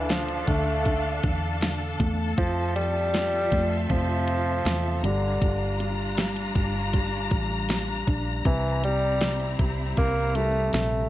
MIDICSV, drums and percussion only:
0, 0, Header, 1, 2, 480
1, 0, Start_track
1, 0, Tempo, 759494
1, 1502, Time_signature, 4, 2, 24, 8
1, 7010, End_track
2, 0, Start_track
2, 0, Title_t, "Drums"
2, 59, Note_on_c, 9, 42, 95
2, 63, Note_on_c, 9, 38, 107
2, 122, Note_off_c, 9, 42, 0
2, 126, Note_off_c, 9, 38, 0
2, 180, Note_on_c, 9, 42, 45
2, 243, Note_off_c, 9, 42, 0
2, 300, Note_on_c, 9, 36, 76
2, 300, Note_on_c, 9, 42, 75
2, 363, Note_off_c, 9, 42, 0
2, 364, Note_off_c, 9, 36, 0
2, 539, Note_on_c, 9, 42, 84
2, 542, Note_on_c, 9, 36, 74
2, 602, Note_off_c, 9, 42, 0
2, 605, Note_off_c, 9, 36, 0
2, 780, Note_on_c, 9, 42, 68
2, 781, Note_on_c, 9, 36, 91
2, 843, Note_off_c, 9, 42, 0
2, 845, Note_off_c, 9, 36, 0
2, 1018, Note_on_c, 9, 42, 83
2, 1026, Note_on_c, 9, 38, 107
2, 1082, Note_off_c, 9, 42, 0
2, 1090, Note_off_c, 9, 38, 0
2, 1262, Note_on_c, 9, 36, 91
2, 1264, Note_on_c, 9, 42, 80
2, 1325, Note_off_c, 9, 36, 0
2, 1327, Note_off_c, 9, 42, 0
2, 1503, Note_on_c, 9, 36, 109
2, 1503, Note_on_c, 9, 42, 81
2, 1566, Note_off_c, 9, 36, 0
2, 1566, Note_off_c, 9, 42, 0
2, 1745, Note_on_c, 9, 42, 62
2, 1808, Note_off_c, 9, 42, 0
2, 1984, Note_on_c, 9, 42, 100
2, 1987, Note_on_c, 9, 38, 111
2, 2047, Note_off_c, 9, 42, 0
2, 2051, Note_off_c, 9, 38, 0
2, 2102, Note_on_c, 9, 42, 47
2, 2165, Note_off_c, 9, 42, 0
2, 2223, Note_on_c, 9, 36, 76
2, 2225, Note_on_c, 9, 42, 75
2, 2286, Note_off_c, 9, 36, 0
2, 2288, Note_off_c, 9, 42, 0
2, 2462, Note_on_c, 9, 42, 79
2, 2464, Note_on_c, 9, 36, 73
2, 2525, Note_off_c, 9, 42, 0
2, 2527, Note_off_c, 9, 36, 0
2, 2702, Note_on_c, 9, 42, 67
2, 2766, Note_off_c, 9, 42, 0
2, 2939, Note_on_c, 9, 42, 74
2, 2947, Note_on_c, 9, 38, 96
2, 3003, Note_off_c, 9, 42, 0
2, 3011, Note_off_c, 9, 38, 0
2, 3185, Note_on_c, 9, 42, 80
2, 3248, Note_off_c, 9, 42, 0
2, 3423, Note_on_c, 9, 36, 106
2, 3425, Note_on_c, 9, 42, 84
2, 3486, Note_off_c, 9, 36, 0
2, 3488, Note_off_c, 9, 42, 0
2, 3666, Note_on_c, 9, 42, 60
2, 3729, Note_off_c, 9, 42, 0
2, 3902, Note_on_c, 9, 42, 96
2, 3906, Note_on_c, 9, 38, 111
2, 3965, Note_off_c, 9, 42, 0
2, 3969, Note_off_c, 9, 38, 0
2, 4022, Note_on_c, 9, 42, 48
2, 4085, Note_off_c, 9, 42, 0
2, 4142, Note_on_c, 9, 36, 84
2, 4144, Note_on_c, 9, 42, 72
2, 4205, Note_off_c, 9, 36, 0
2, 4207, Note_off_c, 9, 42, 0
2, 4382, Note_on_c, 9, 42, 79
2, 4383, Note_on_c, 9, 36, 79
2, 4445, Note_off_c, 9, 42, 0
2, 4446, Note_off_c, 9, 36, 0
2, 4619, Note_on_c, 9, 42, 67
2, 4621, Note_on_c, 9, 36, 84
2, 4682, Note_off_c, 9, 42, 0
2, 4685, Note_off_c, 9, 36, 0
2, 4858, Note_on_c, 9, 42, 81
2, 4866, Note_on_c, 9, 38, 107
2, 4922, Note_off_c, 9, 42, 0
2, 4930, Note_off_c, 9, 38, 0
2, 5102, Note_on_c, 9, 36, 90
2, 5104, Note_on_c, 9, 42, 88
2, 5166, Note_off_c, 9, 36, 0
2, 5167, Note_off_c, 9, 42, 0
2, 5341, Note_on_c, 9, 42, 78
2, 5342, Note_on_c, 9, 36, 107
2, 5404, Note_off_c, 9, 42, 0
2, 5405, Note_off_c, 9, 36, 0
2, 5585, Note_on_c, 9, 42, 62
2, 5648, Note_off_c, 9, 42, 0
2, 5819, Note_on_c, 9, 42, 96
2, 5822, Note_on_c, 9, 38, 115
2, 5882, Note_off_c, 9, 42, 0
2, 5886, Note_off_c, 9, 38, 0
2, 5939, Note_on_c, 9, 42, 48
2, 6002, Note_off_c, 9, 42, 0
2, 6062, Note_on_c, 9, 36, 84
2, 6062, Note_on_c, 9, 42, 72
2, 6125, Note_off_c, 9, 36, 0
2, 6125, Note_off_c, 9, 42, 0
2, 6302, Note_on_c, 9, 42, 89
2, 6304, Note_on_c, 9, 36, 82
2, 6365, Note_off_c, 9, 42, 0
2, 6367, Note_off_c, 9, 36, 0
2, 6542, Note_on_c, 9, 42, 64
2, 6605, Note_off_c, 9, 42, 0
2, 6781, Note_on_c, 9, 42, 82
2, 6789, Note_on_c, 9, 38, 99
2, 6844, Note_off_c, 9, 42, 0
2, 6852, Note_off_c, 9, 38, 0
2, 7010, End_track
0, 0, End_of_file